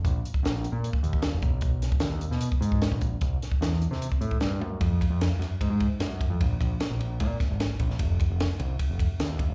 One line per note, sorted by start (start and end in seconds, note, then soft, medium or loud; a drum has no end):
0.05 0.20 A#1 medium
0.05 kick loud
0.05 closed hi-hat medium
0.25 closed hi-hat medium
0.34 kick medium
0.43 0.67 A#1 medium
0.43 snare loud
0.43 closed hi-hat medium
0.64 closed hi-hat soft
0.72 0.88 A#2 medium
0.84 closed hi-hat medium
0.93 kick medium
1.03 1.26 D#2 medium
1.03 closed hi-hat medium
1.13 kick medium
1.22 snare loud
1.22 closed hi-hat medium
1.33 1.41 F1 medium
1.42 1.90 B1 loud
1.42 kick medium
1.42 closed hi-hat soft
1.61 kick loud
1.61 closed hi-hat medium
1.82 snare soft
1.82 closed hi-hat medium
1.92 kick medium
2.00 2.25 D#2 medium
2.00 snare loud
2.00 closed hi-hat medium
2.21 closed hi-hat medium
2.31 2.47 B2 medium
2.31 snare soft
2.41 closed hi-hat medium
2.52 kick medium
2.61 2.85 G#2 medium
2.61 closed hi-hat medium
2.72 kick medium
2.82 snare loud
2.82 closed hi-hat medium
2.92 3.15 A#1 medium
2.92 kick medium
3.01 kick medium
3.01 closed hi-hat medium
3.21 3.37 C2 medium
3.21 kick loud
3.21 closed hi-hat medium
3.42 snare soft
3.42 closed hi-hat medium
3.52 kick medium
3.61 3.85 E2 medium
3.61 snare loud
3.61 closed hi-hat medium
3.72 snare soft
3.82 closed hi-hat soft
3.91 4.07 C3 medium
3.91 snare soft
4.02 closed hi-hat medium
4.12 kick medium
4.21 4.37 A2 medium
4.21 closed hi-hat medium
4.31 kick medium
4.41 4.59 G2 medium
4.41 snare loud
4.41 closed hi-hat medium
4.60 4.78 F#2 medium
4.60 high tom medium
4.81 5.04 F2 medium
4.81 kick medium
4.81 ride medium
5.01 kick medium
5.01 ride medium
5.10 5.26 F2 medium
5.21 snare loud
5.21 ride medium
5.39 5.48 F#2 medium
5.39 snare soft
5.39 ride soft
5.61 5.69 G#2 medium
5.61 kick medium
5.61 ride medium
5.70 5.86 G#2 medium
5.80 kick medium
5.80 ride medium
6.00 6.24 F#2 medium
6.00 snare medium
6.00 ride medium
6.21 kick medium
6.21 ride soft
6.30 6.38 F2 medium
6.41 6.56 A#1 medium
6.41 kick medium
6.41 ride medium
6.61 6.76 A#1 medium
6.61 kick medium
6.61 ride medium
6.80 snare medium
6.80 ride medium
6.90 7.22 A#1 medium
7.00 ride soft
7.20 7.36 A#2 medium
7.20 kick medium
7.20 ride medium
7.40 kick medium
7.40 snare soft
7.40 ride medium
7.51 7.66 G#1 medium
7.60 snare loud
7.60 ride medium
7.80 7.95 A#1 loud
7.80 kick medium
7.80 ride medium
7.90 snare soft
7.99 8.23 F1 medium
7.99 kick medium
7.99 ride medium
8.20 kick medium
8.20 ride medium
8.30 8.46 F1 medium
8.40 snare loud
8.40 ride medium
8.60 8.75 C2 medium
8.60 ride medium
8.79 kick medium
8.79 ride medium
8.89 9.05 F1 medium
8.99 kick medium
8.99 ride medium
9.20 9.43 D#2 medium
9.20 snare loud
9.20 ride medium
9.39 kick medium
9.39 ride medium
9.48 9.54 F1 medium